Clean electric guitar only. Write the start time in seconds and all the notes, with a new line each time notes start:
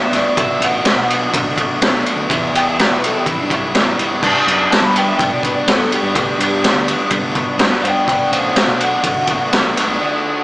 0.04 E5
0.15 D5
0.38 E5
0.64 F#5
2.56 G5
2.68 E5
2.82 D5
2.91 B4
3.06 A4
3.18 G4
3.28 E4
3.39 D4
3.51 E4
4.71 A5
4.84 B5
4.97 G5
5.07 E5
5.17 G5
5.33 D5
5.42 B4
5.55 D5
5.71 A4
5.93 G4
7.82 D5 G5
8.08 D5 G5
8.31 C5 F5
8.56 C5 F5
8.82 F#5